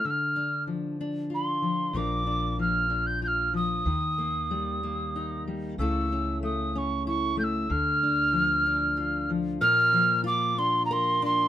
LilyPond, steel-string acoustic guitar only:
\new Staff \with { instrumentName = "Steel-string acoustic guitar" } { \time 3/4 \key bes \major \tempo 4 = 94 << { r8 d'4 d'8 f'4 | <f d' f' bes'>8 d'4 d'8 f'4 | r8 bes4 bes8 ees'4 | <a cis' e' a'>8 cis'4 cis'8 e'4 |
r8 d'4 d'8 f'4 | bes'4 f'8 d'8 bes'8 d'8 | } \\ { d4 f4. f8 | bes,4 f4. f8 | ees4 g4. g8 | cis4 a4. a8 |
d4 f4. f8 | bes,8 f2~ f8 | } >> }